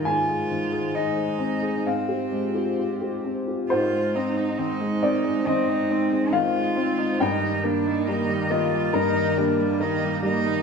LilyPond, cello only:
\new Staff \with { instrumentName = "Cello" } { \time 4/4 \key aes \lydian \tempo 4 = 68 f'4 ees'4 c'4. r8 | f'8 ees'8 ees'4 c'4 f'4 | ees'8 d'8 ees'8 f'8 ees'8 d'8 ees'8 ees'8 | }